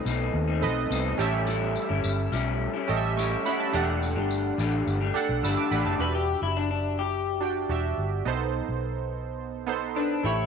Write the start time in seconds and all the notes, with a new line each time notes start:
Already playing: C4 A4 B4 D#5
0.05 B1 B2 A3 C4 D#4, tambourine
0.34 D#2
0.48 A3 C4 D#4
0.61 B1 C4 A4 B4 D#5, tambourine
0.90 C2 B2 A3 C4 D#4, tambourine
1.18 A1 A2 G3 C#4 E4 G4 A4 E5, tambourine
1.46 A2 G3 C#4 E4, tambourine
1.76 tambourine
1.89 G1 G3 C#4 E4
2.04 G1, tambourine
2.31 B1 A2 G3 C#4 E4, tambourine
2.74 G3 C#4 E4
2.87 A1 C#4 G4 A4 D#5, tambourine
2.96 E5
3.16 A2 G3 C#4 E4 G5 C#6, tambourine
3.45 A2 G3 C#4 E4 F#5 B5, tambourine
3.60 E5 A5
3.73 E1 E3 A3 D4 G4 A4 F#5, tambourine
4.02 tambourine
4.16 G1 A3 D4 G4
4.31 tambourine
4.58 A1 E3 A3 D4 G4, tambourine
4.87 G1, tambourine
5.01 A3 D4 G4
5.14 D4 G4 A4 F#5, tambourine
5.29 B1
5.43 G1 E3 A3 D4 G4 B5 E6, tambourine
5.57 A5 D6
5.71 A1 E3 A3 D4 G4 F#5 B5, tambourine
5.85 F#1 E5 A5
5.99 E1 D4 F#4 G4 B4 E5
6.15 G4
6.42 F#1 E4
6.57 D4
6.71 D4
6.99 G4
7.40 D4 F#4 G4 G5
7.69 E1 D4 F#4 G4 E5
7.98 G1
8.25 B1 B3 D#4 A4 C5
8.69 B1
9.67 B3 D#4 A4 C5
9.95 B3 D4 D#4 A4 B4
10.23 A1 A3 E4 G4 C#5